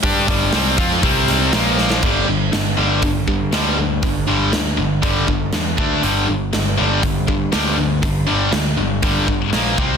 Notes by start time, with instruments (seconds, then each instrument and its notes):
0.03 picked electric bass G2, distorted electric guitar G3 D4 G4, kick, open hi-hat
0.27 picked electric bass G1, distorted electric guitar G2 D3 G3, kick, open hi-hat
0.52 picked electric bass C2, distorted electric guitar C3 G3 C4, snare, open hi-hat
0.77 picked electric bass F2, distorted electric guitar F3 C4 F4, kick, open hi-hat
0.91 snare
1.02 picked electric bass C2, distorted electric guitar C3 G3 C4, kick, open hi-hat
1.28 snare, open hi-hat
1.53 picked electric bass A#1, distorted electric guitar A#2 F3 A#3, snare, open hi-hat
1.78 snare
1.90 snare
2.03 picked electric bass G1, distorted electric guitar G2 D3 G3, kick, crash
2.27 picked electric bass G1, distorted electric guitar G2 D3
2.52 picked electric bass G1, distorted electric guitar G2 D3, snare, open hi-hat
2.77 picked electric bass G1, distorted electric guitar G2 D3 G3
3.02 picked electric bass G1, distorted electric guitar G2 D3, kick, open hi-hat
3.27 distorted electric guitar G2 D3, picked electric bass G2, kick
3.52 picked electric bass D2, distorted electric guitar G2 D3 G3, snare, open hi-hat
3.78 picked electric bass D2, distorted electric guitar G2 D3
4.02 picked electric bass G1, distorted electric guitar G2 D3, kick, open hi-hat
4.27 distorted electric guitar G2 D3 G3
4.53 picked electric bass D2, distorted electric guitar G2 D3, snare, open hi-hat
4.77 picked electric bass G1, distorted electric guitar G2 D3
5.02 picked electric bass G1, distorted electric guitar G2 D3 G3, kick, open hi-hat
5.27 distorted electric guitar G2 D3, kick
5.53 picked electric bass E2, distorted electric guitar G2 D3, snare, open hi-hat
5.78 picked electric bass D2, distorted electric guitar D3 A3 D4, kick
6.02 picked electric bass G1, distorted electric guitar G2 D3 G3, open hi-hat
6.28 picked electric bass G1, distorted electric guitar G2 D3
6.53 picked electric bass G1, distorted electric guitar G2 D3, snare, open hi-hat
6.77 picked electric bass G1, distorted electric guitar G2 D3 G3
7.03 picked electric bass G1, distorted electric guitar G2 D3, kick, open hi-hat
7.27 distorted electric guitar G2 D3, picked electric bass G2, kick
7.52 picked electric bass D2, distorted electric guitar G2 D3 G3, snare, open hi-hat
7.77 picked electric bass D2, distorted electric guitar G2 D3
8.02 picked electric bass G1, distorted electric guitar G2 D3, kick, open hi-hat
8.27 distorted electric guitar G2 D3 G3
8.52 picked electric bass D2, distorted electric guitar G2 D3, snare, open hi-hat
8.77 picked electric bass G1, distorted electric guitar G2 D3
9.02 picked electric bass G1, distorted electric guitar G2 D3 G3, kick, open hi-hat
9.27 distorted electric guitar G2 D3, kick
9.53 picked electric bass A#1, distorted electric guitar A#2 F3 A#3, snare, open hi-hat
9.78 picked electric bass C2, distorted electric guitar C3 G3 C4, kick